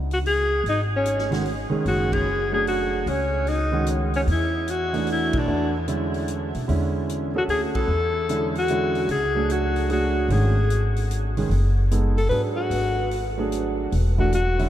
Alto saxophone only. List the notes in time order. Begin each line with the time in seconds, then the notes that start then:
0.13 F#4
0.27 G#4
0.69 D#4
0.96 C#4
1.88 F#4
2.13 G#4
2.54 G#4
2.68 F#4
3.09 C#4
3.48 D#4
4.16 C#4
4.31 E4
4.71 F#4
5.12 E4
5.38 D4
7.38 F#4
7.50 G#4
7.75 A4
8.59 F#4
9.11 G#4
9.52 F#4
9.92 F#4
10.33 G#4
12.18 A4
12.29 B4
12.56 F#4
14.20 F#4
14.34 F#4